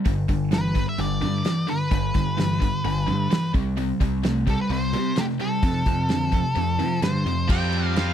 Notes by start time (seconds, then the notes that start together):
0.05 G1 G2 D3, kick, open hi-hat
0.28 G1 G2 D3, kick, open hi-hat
0.51 G2 E3 B4, snare, open hi-hat
0.75 G2 D3, kick, open hi-hat
0.89 E5
0.98 G1 G2 D3 D5, open hi-hat
1.22 G2 D3, open hi-hat
1.45 G2 E3, snare, open hi-hat
1.68 G2 D3 B4, open hi-hat
1.91 G1 G2 D3, kick, open hi-hat
2.14 G1 G2 D3, kick, open hi-hat
2.37 G2 E3, snare, open hi-hat
2.62 G2 D3, kick, open hi-hat
2.84 G1 G2 D3, open hi-hat
3.07 G2 D3, open hi-hat
3.30 G2 E3, snare, open hi-hat
3.44 snare
3.54 C2 C3 G3, kick, open hi-hat
3.77 C3 G3, open hi-hat
4.00 C2 C3 G3, kick, open hi-hat
4.24 C3 A3, snare, open hi-hat
4.47 C3 G3 A4, kick, open hi-hat
4.61 B4
4.70 C2 C3 G3 C5, open hi-hat
4.93 C3 G3, open hi-hat
5.16 C3 A3 G4, snare, open hi-hat
5.29 snare
5.40 C3 G3 A4, open hi-hat
5.63 F2 C3, kick, open hi-hat
5.86 F2 C3, kick, open hi-hat
6.09 F2 D3, snare, open hi-hat
6.32 F2 C3, kick, open hi-hat
6.56 F2 C3, open hi-hat
6.79 F2 C3 F3, open hi-hat
7.02 F2 G2 D3 C5, snare, open hi-hat
7.25 F2 C3, open hi-hat
7.47 F2 F3 G3 C4 F4 G4 F5 G5, kick, crash
7.52 F4 G4
7.62 snare
7.72 G3 C4 F4, ride
7.96 F3 G3 C4 F4 F5, snare, ride